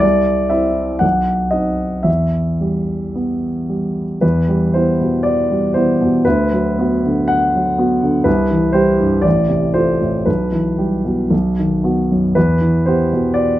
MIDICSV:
0, 0, Header, 1, 2, 480
1, 0, Start_track
1, 0, Key_signature, 1, "minor"
1, 0, Tempo, 1018676
1, 13, Time_signature, 2, 2, 24, 8
1, 974, Tempo, 1079137
1, 1934, Tempo, 1010101
1, 2894, Tempo, 1052632
1, 3374, Tempo, 975610
1, 4334, Tempo, 1036269
1, 5774, Tempo, 993377
1, 6371, End_track
2, 0, Start_track
2, 0, Title_t, "Grand piano"
2, 0, Program_c, 0, 0
2, 0, Control_c, 0, 64, 127
2, 0, Note_on_c, 0, 36, 52
2, 0, Note_on_c, 0, 74, 78
2, 20, Control_c, 0, 64, 0
2, 89, Control_c, 0, 64, 127
2, 233, Note_on_c, 0, 76, 58
2, 235, Note_on_c, 0, 60, 36
2, 239, Note_off_c, 0, 74, 0
2, 240, Note_on_c, 0, 64, 42
2, 452, Note_off_c, 0, 36, 0
2, 460, Note_off_c, 0, 60, 0
2, 463, Note_off_c, 0, 64, 0
2, 467, Note_on_c, 0, 78, 65
2, 476, Note_on_c, 0, 35, 45
2, 478, Note_off_c, 0, 76, 0
2, 494, Control_c, 0, 64, 0
2, 561, Control_c, 0, 64, 127
2, 710, Note_on_c, 0, 75, 55
2, 714, Note_on_c, 0, 60, 34
2, 716, Note_off_c, 0, 78, 0
2, 720, Note_on_c, 0, 63, 35
2, 950, Note_off_c, 0, 60, 0
2, 953, Note_off_c, 0, 63, 0
2, 955, Note_off_c, 0, 35, 0
2, 956, Note_on_c, 0, 76, 54
2, 963, Note_on_c, 0, 40, 43
2, 967, Note_off_c, 0, 75, 0
2, 984, Control_c, 0, 64, 0
2, 1053, Control_c, 0, 64, 127
2, 1215, Note_on_c, 0, 55, 30
2, 1446, Note_off_c, 0, 76, 0
2, 1458, Note_on_c, 0, 59, 30
2, 1598, Note_off_c, 0, 55, 0
2, 1698, Note_on_c, 0, 55, 30
2, 1843, Note_off_c, 0, 59, 0
2, 1911, Note_off_c, 0, 40, 0
2, 1928, Note_on_c, 0, 71, 57
2, 1933, Note_on_c, 0, 40, 48
2, 1935, Note_off_c, 0, 55, 0
2, 1942, Control_c, 0, 64, 0
2, 2014, Control_c, 0, 64, 127
2, 2058, Note_on_c, 0, 55, 35
2, 2174, Note_off_c, 0, 71, 0
2, 2177, Note_on_c, 0, 72, 57
2, 2184, Note_on_c, 0, 59, 34
2, 2186, Note_on_c, 0, 64, 38
2, 2250, Note_off_c, 0, 55, 0
2, 2289, Note_off_c, 0, 59, 0
2, 2290, Note_off_c, 0, 64, 0
2, 2307, Note_on_c, 0, 47, 36
2, 2412, Note_on_c, 0, 74, 61
2, 2417, Note_off_c, 0, 72, 0
2, 2545, Note_on_c, 0, 55, 36
2, 2652, Note_off_c, 0, 74, 0
2, 2654, Note_on_c, 0, 72, 60
2, 2663, Note_on_c, 0, 59, 35
2, 2665, Note_on_c, 0, 64, 39
2, 2683, Note_off_c, 0, 47, 0
2, 2731, Note_off_c, 0, 55, 0
2, 2767, Note_off_c, 0, 59, 0
2, 2768, Note_off_c, 0, 64, 0
2, 2783, Note_on_c, 0, 47, 37
2, 2874, Note_off_c, 0, 40, 0
2, 2894, Note_off_c, 0, 72, 0
2, 2895, Note_on_c, 0, 71, 68
2, 2899, Note_off_c, 0, 47, 0
2, 2901, Control_c, 0, 64, 0
2, 2901, Note_on_c, 0, 38, 53
2, 2992, Control_c, 0, 64, 127
2, 3020, Note_on_c, 0, 54, 38
2, 3140, Note_on_c, 0, 59, 38
2, 3145, Note_on_c, 0, 66, 39
2, 3214, Note_off_c, 0, 54, 0
2, 3249, Note_off_c, 0, 59, 0
2, 3251, Note_off_c, 0, 66, 0
2, 3267, Note_on_c, 0, 50, 41
2, 3364, Note_on_c, 0, 78, 74
2, 3375, Note_off_c, 0, 71, 0
2, 3500, Note_on_c, 0, 54, 41
2, 3613, Note_on_c, 0, 59, 41
2, 3615, Note_on_c, 0, 66, 45
2, 3639, Note_off_c, 0, 50, 0
2, 3684, Note_off_c, 0, 54, 0
2, 3717, Note_off_c, 0, 59, 0
2, 3718, Note_off_c, 0, 66, 0
2, 3735, Note_on_c, 0, 50, 40
2, 3830, Note_off_c, 0, 38, 0
2, 3838, Note_on_c, 0, 71, 67
2, 3840, Note_off_c, 0, 78, 0
2, 3843, Note_on_c, 0, 36, 57
2, 3850, Note_off_c, 0, 50, 0
2, 3855, Control_c, 0, 64, 0
2, 3933, Control_c, 0, 64, 127
2, 3969, Note_on_c, 0, 52, 40
2, 4076, Note_on_c, 0, 72, 66
2, 4083, Note_off_c, 0, 71, 0
2, 4084, Note_on_c, 0, 55, 40
2, 4084, Note_on_c, 0, 67, 43
2, 4162, Note_off_c, 0, 52, 0
2, 4196, Note_off_c, 0, 55, 0
2, 4196, Note_off_c, 0, 67, 0
2, 4212, Note_on_c, 0, 43, 41
2, 4318, Note_off_c, 0, 36, 0
2, 4318, Note_on_c, 0, 74, 68
2, 4323, Note_on_c, 0, 33, 47
2, 4329, Note_off_c, 0, 72, 0
2, 4335, Note_off_c, 0, 43, 0
2, 4342, Control_c, 0, 64, 0
2, 4412, Control_c, 0, 64, 127
2, 4444, Note_on_c, 0, 48, 40
2, 4560, Note_on_c, 0, 72, 65
2, 4563, Note_off_c, 0, 74, 0
2, 4564, Note_on_c, 0, 57, 35
2, 4565, Note_on_c, 0, 65, 38
2, 4638, Note_off_c, 0, 48, 0
2, 4675, Note_off_c, 0, 57, 0
2, 4675, Note_off_c, 0, 65, 0
2, 4686, Note_on_c, 0, 45, 35
2, 4790, Note_off_c, 0, 33, 0
2, 4800, Note_on_c, 0, 71, 57
2, 4804, Note_off_c, 0, 72, 0
2, 4805, Note_on_c, 0, 35, 46
2, 4808, Note_off_c, 0, 45, 0
2, 4816, Control_c, 0, 64, 0
2, 4905, Control_c, 0, 64, 127
2, 4924, Note_on_c, 0, 52, 33
2, 5043, Note_on_c, 0, 55, 33
2, 5046, Note_on_c, 0, 67, 37
2, 5120, Note_off_c, 0, 52, 0
2, 5156, Note_off_c, 0, 55, 0
2, 5157, Note_off_c, 0, 67, 0
2, 5167, Note_on_c, 0, 47, 36
2, 5276, Note_off_c, 0, 35, 0
2, 5286, Note_on_c, 0, 35, 45
2, 5291, Note_off_c, 0, 47, 0
2, 5301, Control_c, 0, 64, 0
2, 5389, Control_c, 0, 64, 127
2, 5419, Note_on_c, 0, 51, 34
2, 5530, Note_off_c, 0, 71, 0
2, 5534, Note_on_c, 0, 59, 32
2, 5534, Note_on_c, 0, 66, 38
2, 5610, Note_off_c, 0, 51, 0
2, 5643, Note_off_c, 0, 59, 0
2, 5643, Note_off_c, 0, 66, 0
2, 5662, Note_on_c, 0, 42, 33
2, 5755, Note_off_c, 0, 35, 0
2, 5771, Note_on_c, 0, 71, 64
2, 5777, Note_off_c, 0, 42, 0
2, 5779, Note_on_c, 0, 40, 52
2, 5782, Control_c, 0, 64, 0
2, 5869, Control_c, 0, 64, 127
2, 5897, Note_on_c, 0, 52, 38
2, 6015, Note_on_c, 0, 72, 59
2, 6016, Note_off_c, 0, 71, 0
2, 6021, Note_on_c, 0, 59, 36
2, 6025, Note_on_c, 0, 67, 39
2, 6091, Note_off_c, 0, 52, 0
2, 6128, Note_off_c, 0, 59, 0
2, 6131, Note_off_c, 0, 67, 0
2, 6147, Note_on_c, 0, 47, 41
2, 6248, Note_on_c, 0, 74, 63
2, 6256, Note_off_c, 0, 72, 0
2, 6371, Note_off_c, 0, 40, 0
2, 6371, Note_off_c, 0, 47, 0
2, 6371, Note_off_c, 0, 74, 0
2, 6371, End_track
0, 0, End_of_file